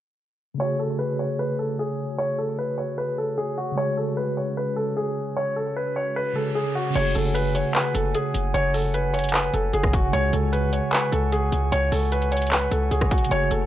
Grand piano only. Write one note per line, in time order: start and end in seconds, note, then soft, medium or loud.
0.60 0.78 C#5 loud
0.79 0.97 A4 medium
0.99 1.17 B4 medium
1.19 1.37 C#5 medium
1.39 1.57 B4 medium
1.59 1.77 A4 medium
1.79 2.16 G#4 medium
2.18 2.36 C#5 loud
2.38 2.56 A4 medium
2.59 2.76 B4 medium
2.78 2.96 C#5 medium
2.98 3.16 B4 medium
3.18 3.36 A4 medium
3.38 3.56 G#4 medium
3.58 3.75 F#4 medium
3.77 3.95 C#5 loud
3.97 4.15 A4 medium
4.17 4.35 B4 medium
4.37 4.55 C#5 medium
4.57 4.75 B4 medium
4.76 4.94 A4 medium
4.97 5.34 G#4 medium
5.37 5.54 C#5 loud
5.56 5.74 A4 medium
5.76 5.94 B4 medium
5.96 6.14 C#5 medium
6.16 6.34 B4 medium
6.36 6.54 A4 medium
6.55 6.73 G#4 medium
6.75 6.93 F#4 medium
6.96 7.13 C#5 loud
7.15 7.33 A4 medium
7.35 7.53 B4 medium
7.55 7.73 C#5 medium
7.75 7.93 B4 medium
7.95 8.12 A4 medium
8.15 8.52 G#4 medium
8.54 8.72 C#5 loud
8.74 8.92 A4 medium
8.94 9.12 B4 medium
9.14 9.32 C#5 medium
9.34 9.52 B4 medium
9.54 9.72 A4 medium
9.73 9.91 G#4 medium
9.93 10.11 F#4 medium
10.13 10.31 C#5 loud
10.33 10.51 A4 medium
10.53 10.71 B4 medium
10.73 10.91 C#5 medium
10.93 11.11 B4 medium
11.12 11.30 A4 medium
11.32 11.70 G#4 medium
11.72 11.90 C#5 loud
11.92 12.10 A4 medium
12.12 12.30 B4 medium
12.32 12.50 C#5 medium
12.52 12.70 B4 medium
12.71 12.89 A4 medium
12.91 13.09 G#4 medium
13.11 13.29 F#4 medium
13.31 13.49 C#5 loud
13.51 13.66 A4 medium